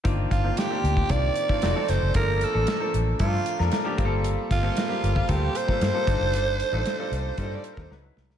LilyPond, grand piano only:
\new Staff \with { instrumentName = "Grand piano" } { \time 4/4 \key f \mixolydian \tempo 4 = 115 <ees bes c' d' f'>8 r16 <ees bes c' d' f'>16 r16 <ees bes c' d' g'>8 r16 <ees bes c' d' f'>8 r16 <ees bes c' d' f'>16 <f a c' ees' ges'>16 <f a c' ees' a'>8 r16 | <f a bes d' a'>8 r16 <f a bes d' a'>16 r16 <f a bes d' a'>8 r16 <f a bes d' a'>8 r16 <f a bes d' bes'>16 r16 <f a bes d' g'>16 <g bes c' f' g' a'>8~ | <g bes c' f' g' a'>8 r16 <g bes c' f' a'>16 r16 <g bes c' f' g'>8 r16 <g bes c' f' a'>8 r16 <g bes c' f' a'>16 r16 <g bes c' f' a'>16 <g d' ees' f' a'>8~ | <g d' ees' f' a'>8 r16 <g d' ees' f' a'>16 r16 <g d' ees' f' a'>8 r16 <g d' ees' f' a'>8 r16 <d' ees' f' a'>16 <fis cis' dis' e' b'>16 <fis cis' dis' e' b'>8 r16 | }